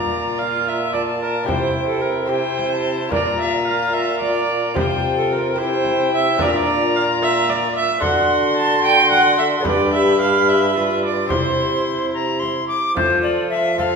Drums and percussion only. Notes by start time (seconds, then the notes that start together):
0.94 frame drum
1.48 frame drum
2.58 frame drum
3.12 frame drum
4.21 frame drum
4.76 frame drum
5.85 frame drum
6.39 frame drum
7.48 frame drum
8.02 frame drum
9.11 frame drum
9.65 frame drum
10.75 frame drum
11.30 frame drum
12.42 frame drum
12.97 frame drum
13.79 frame drum